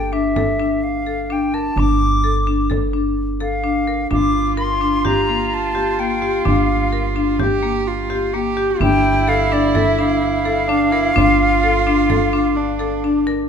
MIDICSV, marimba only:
0, 0, Header, 1, 2, 480
1, 0, Start_track
1, 0, Tempo, 469484
1, 1810, Time_signature, 5, 2, 24, 8
1, 13791, End_track
2, 0, Start_track
2, 0, Title_t, "Marimba"
2, 0, Program_c, 0, 12
2, 130, Note_on_c, 0, 62, 71
2, 284, Note_off_c, 0, 62, 0
2, 371, Note_on_c, 0, 69, 72
2, 525, Note_off_c, 0, 69, 0
2, 608, Note_on_c, 0, 62, 66
2, 917, Note_off_c, 0, 62, 0
2, 1089, Note_on_c, 0, 69, 64
2, 1243, Note_off_c, 0, 69, 0
2, 1331, Note_on_c, 0, 62, 67
2, 1484, Note_off_c, 0, 62, 0
2, 1574, Note_on_c, 0, 70, 66
2, 1726, Note_off_c, 0, 70, 0
2, 1816, Note_on_c, 0, 62, 78
2, 2122, Note_off_c, 0, 62, 0
2, 2288, Note_on_c, 0, 69, 62
2, 2443, Note_off_c, 0, 69, 0
2, 2527, Note_on_c, 0, 62, 66
2, 2681, Note_off_c, 0, 62, 0
2, 2759, Note_on_c, 0, 69, 68
2, 2916, Note_off_c, 0, 69, 0
2, 3000, Note_on_c, 0, 62, 64
2, 3311, Note_off_c, 0, 62, 0
2, 3480, Note_on_c, 0, 69, 67
2, 3637, Note_off_c, 0, 69, 0
2, 3720, Note_on_c, 0, 62, 71
2, 3877, Note_off_c, 0, 62, 0
2, 3961, Note_on_c, 0, 70, 64
2, 4118, Note_off_c, 0, 70, 0
2, 4198, Note_on_c, 0, 62, 80
2, 4509, Note_off_c, 0, 62, 0
2, 4676, Note_on_c, 0, 70, 69
2, 4834, Note_off_c, 0, 70, 0
2, 4919, Note_on_c, 0, 62, 68
2, 5076, Note_off_c, 0, 62, 0
2, 5160, Note_on_c, 0, 67, 77
2, 5317, Note_off_c, 0, 67, 0
2, 5407, Note_on_c, 0, 58, 67
2, 5716, Note_off_c, 0, 58, 0
2, 5878, Note_on_c, 0, 67, 66
2, 6035, Note_off_c, 0, 67, 0
2, 6125, Note_on_c, 0, 58, 73
2, 6280, Note_off_c, 0, 58, 0
2, 6360, Note_on_c, 0, 67, 72
2, 6516, Note_off_c, 0, 67, 0
2, 6597, Note_on_c, 0, 62, 82
2, 6909, Note_off_c, 0, 62, 0
2, 7081, Note_on_c, 0, 70, 69
2, 7237, Note_off_c, 0, 70, 0
2, 7320, Note_on_c, 0, 62, 75
2, 7476, Note_off_c, 0, 62, 0
2, 7562, Note_on_c, 0, 67, 75
2, 7718, Note_off_c, 0, 67, 0
2, 7798, Note_on_c, 0, 58, 68
2, 8109, Note_off_c, 0, 58, 0
2, 8283, Note_on_c, 0, 67, 68
2, 8438, Note_off_c, 0, 67, 0
2, 8524, Note_on_c, 0, 58, 76
2, 8679, Note_off_c, 0, 58, 0
2, 8761, Note_on_c, 0, 67, 71
2, 8917, Note_off_c, 0, 67, 0
2, 9007, Note_on_c, 0, 62, 82
2, 9315, Note_off_c, 0, 62, 0
2, 9482, Note_on_c, 0, 69, 76
2, 9638, Note_off_c, 0, 69, 0
2, 9732, Note_on_c, 0, 62, 74
2, 9884, Note_off_c, 0, 62, 0
2, 9969, Note_on_c, 0, 69, 80
2, 10122, Note_off_c, 0, 69, 0
2, 10210, Note_on_c, 0, 62, 71
2, 10517, Note_off_c, 0, 62, 0
2, 10687, Note_on_c, 0, 69, 69
2, 10841, Note_off_c, 0, 69, 0
2, 10931, Note_on_c, 0, 62, 77
2, 11084, Note_off_c, 0, 62, 0
2, 11168, Note_on_c, 0, 70, 76
2, 11322, Note_off_c, 0, 70, 0
2, 11409, Note_on_c, 0, 62, 93
2, 11717, Note_off_c, 0, 62, 0
2, 11894, Note_on_c, 0, 69, 75
2, 12046, Note_off_c, 0, 69, 0
2, 12133, Note_on_c, 0, 62, 79
2, 12285, Note_off_c, 0, 62, 0
2, 12368, Note_on_c, 0, 69, 82
2, 12522, Note_off_c, 0, 69, 0
2, 12608, Note_on_c, 0, 62, 73
2, 12916, Note_off_c, 0, 62, 0
2, 13081, Note_on_c, 0, 69, 70
2, 13237, Note_off_c, 0, 69, 0
2, 13332, Note_on_c, 0, 62, 81
2, 13485, Note_off_c, 0, 62, 0
2, 13566, Note_on_c, 0, 70, 77
2, 13721, Note_off_c, 0, 70, 0
2, 13791, End_track
0, 0, End_of_file